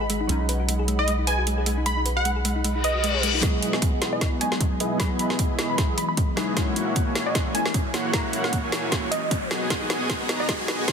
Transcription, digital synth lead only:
0.99 1.12 D#5 medium
1.27 1.42 G#5 medium
1.86 2.01 B5 medium
2.17 2.30 F#5 loud
2.84 3.23 D#5 medium
4.13 4.26 D#5 medium
4.41 4.56 G#5 loud
5.00 5.15 B5 medium
5.19 5.34 B5 medium
5.70 5.96 B5 medium
5.98 6.05 B5 medium
6.08 6.14 B5 medium
7.26 7.40 D#5 medium
7.55 7.69 G#5 medium
8.14 8.28 A#5 medium
8.44 8.58 F#5 medium
9.11 9.51 D#5 loud
10.40 10.47 D#5 medium

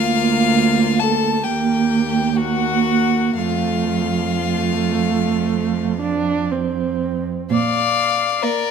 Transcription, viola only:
0.00 1.41 A#3 medium
1.44 2.34 A#3 medium
2.36 3.39 A#3 medium
3.38 4.33 A3 medium
4.44 5.96 A3 medium
6.01 6.53 D4 medium
6.51 7.50 C4 medium
8.43 8.71 A#3 medium

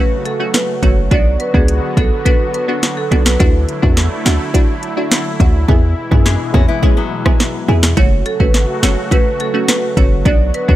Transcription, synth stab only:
0.00 0.17 A3 medium
0.00 0.17 C#4 medium
0.00 0.18 F#4 loud
0.40 0.79 A3 medium
0.40 0.79 C#4 medium
0.40 0.80 F#4 medium
0.83 1.09 A3 medium
0.83 1.09 C#4 medium
0.83 1.09 F#4 medium
1.11 1.51 B3 loud
1.11 1.51 D4 medium
1.11 1.51 F#4 loud
1.54 1.93 B3 medium
1.54 1.94 D4 medium
1.54 1.94 F#4 medium
1.97 2.23 B3 medium
1.97 2.23 D4 medium
1.97 2.24 F#4 medium
2.25 2.46 B3 medium
2.25 2.46 D4 medium
2.25 2.46 F#4 loud
2.68 3.08 B3 medium
2.68 3.08 D4 medium
2.68 3.08 F#4 medium
3.11 3.38 B3 medium
3.11 3.38 D4 medium
3.11 3.38 F#4 medium
3.40 3.79 D4 loud
3.40 3.79 E4 medium
3.40 3.79 F#4 loud
3.82 4.22 D4 medium
3.82 4.22 E4 medium
3.82 4.22 F#4 medium
4.25 4.52 D4 medium
4.25 4.52 E4 medium
4.25 4.52 F#4 medium
4.54 4.75 D4 loud
4.54 4.75 E4 medium
4.54 4.75 F#4 loud
4.97 5.36 D4 medium
4.97 5.37 E4 medium
4.97 5.37 F#4 medium
5.40 5.66 D4 medium
5.40 5.66 E4 medium
5.40 5.66 F#4 medium
5.68 6.08 B3 medium
5.68 6.08 E4 medium
5.68 6.08 G#4 loud
6.11 6.51 B3 medium
6.11 6.51 E4 medium
6.11 6.51 G#4 medium
6.54 6.80 B3 medium
6.54 6.80 E4 medium
6.54 6.81 G#4 medium
6.83 7.03 B3 medium
6.83 7.03 E4 medium
6.83 7.03 G#4 loud
7.25 7.65 B3 medium
7.25 7.65 E4 medium
7.25 7.65 G#4 medium
7.68 7.95 B3 medium
7.68 7.95 E4 medium
7.68 7.95 G#4 medium
7.97 8.36 A3 medium
7.97 8.37 C#4 medium
7.97 8.37 F#4 loud
8.40 8.79 A3 medium
8.40 8.79 C#4 medium
8.40 8.80 F#4 medium
8.83 9.09 A3 medium
8.83 9.09 C#4 medium
8.83 9.09 F#4 medium
9.11 9.32 A3 medium
9.11 9.32 C#4 medium
9.11 9.32 F#4 loud
9.54 9.94 A3 medium
9.54 9.94 C#4 medium
9.54 9.94 F#4 medium
9.97 10.23 A3 medium
9.97 10.23 C#4 medium
9.97 10.23 F#4 medium
10.25 10.65 B3 medium
10.25 10.65 D4 medium
10.25 10.65 F#4 loud
10.68 10.76 B3 medium
10.68 10.76 D4 medium
10.68 10.76 F#4 medium

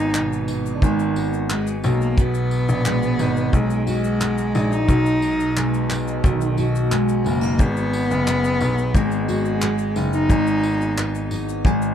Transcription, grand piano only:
0.00 0.78 G#1 loud
0.82 1.80 G#1 medium
1.84 2.65 B1 medium
2.69 3.20 A#1 medium
3.19 3.51 G#1 medium
3.53 4.51 B1 medium
4.55 4.86 A#1 loud
4.89 6.20 B1 loud
6.24 7.22 B1 medium
7.26 7.57 F#1 medium
7.59 8.06 G#1 loud
8.11 8.57 F#1 medium
8.61 8.92 B1 medium
8.95 9.92 G#1 loud
9.96 10.27 F#1 medium
10.29 11.60 G#1 loud
11.65 11.94 G#1 medium

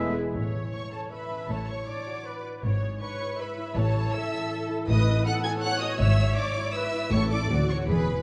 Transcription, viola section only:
0.00 0.14 B3 medium
0.00 0.14 E4 medium
0.35 1.07 C#5 medium
1.12 1.49 E5 medium
1.50 2.26 C#5 medium
2.26 2.64 B4 soft
2.63 3.00 C#5 medium
3.01 3.38 B4 medium
3.39 3.76 E5 medium
3.76 4.13 C#5 medium
4.13 4.88 A4 medium
4.88 5.25 B4 medium
5.25 5.63 A4 medium
5.62 6.75 C#5 loud
6.75 7.12 B4 medium
7.12 7.49 A4 medium
7.50 7.88 F#4 medium
7.88 8.22 G#4 medium

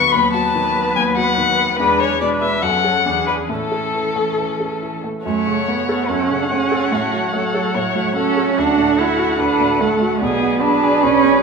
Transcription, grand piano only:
0.00 0.15 D2 soft
0.00 0.15 D3 soft
0.00 0.14 B3 soft
0.00 0.15 F#4 soft
0.13 0.94 D#2 medium
0.34 0.67 F#4 soft
0.55 0.88 D#3 soft
0.76 1.09 B3 soft
0.96 1.77 D#2 soft
1.17 1.50 F#4 soft
1.38 1.71 D#3 soft
1.58 1.79 B3 soft
1.80 2.61 E2 medium
2.00 2.34 G#4 soft
2.21 2.55 B2 soft
2.42 2.63 B3 soft
2.63 3.04 F#2 soft
2.84 3.03 A4 soft
2.84 3.04 C#5 soft
3.06 3.48 E2 soft
3.28 3.47 G#4 soft
3.28 3.48 D5 soft
3.49 4.35 A2 soft
3.72 4.07 A4 soft
3.94 4.29 E3 soft
4.16 4.51 A3 soft
4.38 4.73 E3 soft
4.60 4.95 A4 soft
4.82 5.17 E3 soft
5.04 5.25 A3 soft
5.26 6.07 F#2 soft
5.47 5.80 C#3 soft
5.68 6.01 A3 soft
5.89 6.22 A4 soft
6.10 6.89 F#2 soft
6.31 6.63 C#3 soft
6.51 6.84 A3 soft
6.72 6.92 A4 soft
6.92 7.72 A2 soft
7.13 7.46 F#3 soft
7.34 7.67 A3 soft
7.54 7.87 A4 soft
7.75 8.55 A2 soft
7.96 8.29 F#3 soft
8.17 8.50 A3 soft
8.37 8.58 A4 soft
8.58 9.37 D2 medium
8.78 9.11 A2 soft
8.99 9.31 A3 soft
9.19 9.52 F#4 soft
9.39 10.19 D2 soft
9.60 9.93 A2 soft
9.81 10.14 A3 soft
10.02 10.22 F#4 soft
10.22 11.01 B1 medium
10.42 10.75 B2 soft
10.63 10.95 B3 soft
10.83 11.16 G#4 soft
11.04 11.43 B1 soft
11.24 11.43 B2 soft

